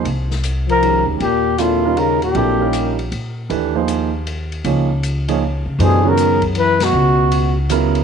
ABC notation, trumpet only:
X:1
M:3/4
L:1/8
Q:"Swing" 1/4=157
K:Ebmix
V:1 name="Trumpet"
z3 B2 z | G2 F2 B G- | G3 z3 | z6 |
z6 | [K:F#mix] G A2 z B F- | F3 z3 |]